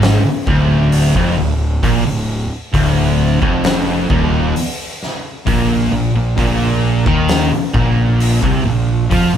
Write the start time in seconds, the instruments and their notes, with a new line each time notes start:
Already playing: fingered electric bass G#1, distorted electric guitar G#2
0.02 snare, open hi-hat
0.23 muted fingered electric bass stroke, muted distorted electric guitar stroke
0.47 fingered electric bass D1, distorted electric guitar D2, kick
0.92 open hi-hat
1.15 fingered electric bass F1, distorted electric guitar F2, kick
1.36 fingered electric bass D1, distorted electric guitar D2
1.83 fingered electric bass A#1, distorted electric guitar A#2, kick, open hi-hat
2.04 fingered electric bass D1, distorted electric guitar D2
2.73 fingered electric bass D1, distorted electric guitar D2, kick, open hi-hat
3.40 fingered electric bass F1, distorted electric guitar F2, kick
3.64 snare, open hi-hat
4.10 fingered electric bass D#1, distorted electric guitar D#2, kick
4.56 open hi-hat
5.03 snare
5.46 fingered electric bass A#1, distorted electric guitar A#2, kick, open hi-hat
5.92 fingered electric bass A#1, distorted electric guitar A#2
6.14 fingered electric bass A#1, distorted electric guitar A#2
6.37 fingered electric bass A#1, distorted electric guitar A#2, kick, open hi-hat
7.05 fingered electric bass D#2, distorted electric guitar D#3, kick
7.28 snare, open hi-hat
7.52 muted fingered electric bass stroke, muted distorted electric guitar stroke
7.74 fingered electric bass A#1, distorted electric guitar A#2, kick
8.20 open hi-hat
8.43 fingered electric bass C2, distorted electric guitar C3, kick
8.65 fingered electric bass A#1, distorted electric guitar A#2
9.10 fingered electric bass F2, distorted electric guitar F3, kick, open hi-hat
9.33 fingered electric bass A#1, distorted electric guitar A#2